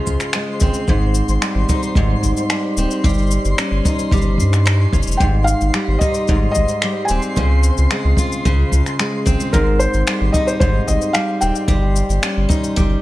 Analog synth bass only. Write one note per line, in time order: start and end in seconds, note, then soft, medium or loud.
0.07 0.16 C#2 medium
0.62 0.70 G#1 medium
0.88 1.22 G#1 medium
1.28 1.38 G#1 medium
1.55 1.64 G#1 medium
1.96 2.14 G#1 medium
2.23 2.32 G#1 medium
2.77 2.86 D#1 medium
3.04 3.38 G1 medium
3.45 3.54 G1 medium
3.71 3.81 G1 medium
4.12 4.40 G1 medium
4.38 4.86 G2 medium
4.93 5.02 G1 medium
5.07 5.16 F1 medium
5.20 5.54 G#1 medium
5.61 5.70 G#1 medium
5.88 5.97 G#1 medium
6.29 6.47 G#1 medium
6.57 6.65 G#1 medium
7.10 7.19 D#1 medium
7.37 7.70 C#2 loud
7.78 7.87 C#2 loud
8.04 8.14 C#2 medium
8.45 8.63 C#2 medium
8.72 8.81 C#2 medium
9.27 9.35 G#1 medium
9.53 9.87 G#1 medium
9.94 10.03 G#1 medium
10.21 10.30 G#1 medium
10.61 10.79 G#1 medium
10.88 10.97 G#1 medium
11.42 11.51 D#1 medium
11.68 12.02 G1 medium
12.09 12.19 G1 loud
12.37 12.46 G1 medium
12.77 12.96 G1 medium